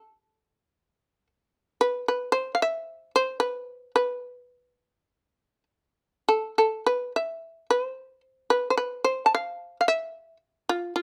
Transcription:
Already playing: A4
1.81 B4
2.08 B4
2.32 C5
2.55 F5
2.62 E5
3.16 C5
3.40 B4
3.96 B4
6.29 A4
6.58 A4
6.86 B4
7.16 E5
7.71 B4
7.83 C5
8.50 B4
8.70 C5
8.78 B4
9.04 C5
9.26 A5
9.35 F5
9.81 F5
9.88 E5
10.69 F4
10.96 F4

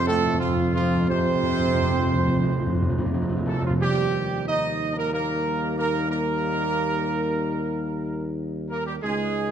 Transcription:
Already playing: F2
0.02 F2 A2
0.07 F2 A3 A4
0.17 F2
0.26 F2
0.33 F2
0.39 F2 F3 F4
0.48 F2
0.56 F2
0.64 F2
0.72 F2 F3 F4
0.80 F2
0.88 F2
0.96 F2
1.04 F2
1.09 F2 C3 C4 C5
1.19 F2
1.27 F2
1.34 F2
1.43 F2
1.51 F2
1.59 F2
1.67 F2
1.74 F2
1.82 F2
1.90 F2
1.98 F2
2.06 F2
2.13 F2
2.20 F2
2.28 F2
2.36 F2
2.44 F2
2.51 F2
2.59 F2
2.67 F2
2.74 F2
2.82 F2
2.90 F2
2.98 F2
3.06 F2
3.14 F2
3.22 F2
3.29 F2
3.37 F2
3.46 F2 A3 A4
3.53 F2
3.62 F2 F3 F4
3.70 F2
3.80 D#2 G3 D#4 G4
4.47 D#4 D#5
4.95 A#3 A#4
5.12 A#3 A#4
5.76 A#3 A#4
6.09 A#3 A#4
8.70 A#3 A#4
8.87 G3 G4
9.02 C#2 G#3 D#4 G#4

